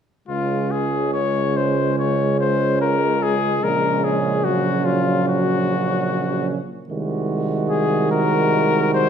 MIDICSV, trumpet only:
0, 0, Header, 1, 2, 480
1, 0, Start_track
1, 0, Key_signature, -5, "major"
1, 0, Tempo, 832178
1, 163, Time_signature, 4, 2, 24, 8
1, 2560, Tempo, 814111
1, 5304, End_track
2, 0, Start_track
2, 0, Title_t, "Trumpet"
2, 0, Program_c, 0, 56
2, 165, Note_on_c, 0, 65, 46
2, 410, Note_on_c, 0, 68, 44
2, 419, Note_off_c, 0, 65, 0
2, 651, Note_off_c, 0, 68, 0
2, 654, Note_on_c, 0, 73, 45
2, 904, Note_on_c, 0, 72, 44
2, 912, Note_off_c, 0, 73, 0
2, 1138, Note_off_c, 0, 72, 0
2, 1146, Note_on_c, 0, 73, 48
2, 1374, Note_off_c, 0, 73, 0
2, 1386, Note_on_c, 0, 72, 48
2, 1613, Note_off_c, 0, 72, 0
2, 1623, Note_on_c, 0, 70, 53
2, 1862, Note_on_c, 0, 68, 46
2, 1871, Note_off_c, 0, 70, 0
2, 2095, Note_on_c, 0, 70, 48
2, 2104, Note_off_c, 0, 68, 0
2, 2331, Note_on_c, 0, 68, 42
2, 2339, Note_off_c, 0, 70, 0
2, 2563, Note_on_c, 0, 66, 46
2, 2572, Note_off_c, 0, 68, 0
2, 2803, Note_on_c, 0, 65, 44
2, 2811, Note_off_c, 0, 66, 0
2, 3045, Note_off_c, 0, 65, 0
2, 3054, Note_on_c, 0, 66, 55
2, 3759, Note_off_c, 0, 66, 0
2, 4482, Note_on_c, 0, 68, 51
2, 4708, Note_off_c, 0, 68, 0
2, 4728, Note_on_c, 0, 70, 54
2, 5193, Note_off_c, 0, 70, 0
2, 5215, Note_on_c, 0, 72, 60
2, 5304, Note_off_c, 0, 72, 0
2, 5304, End_track
0, 0, End_of_file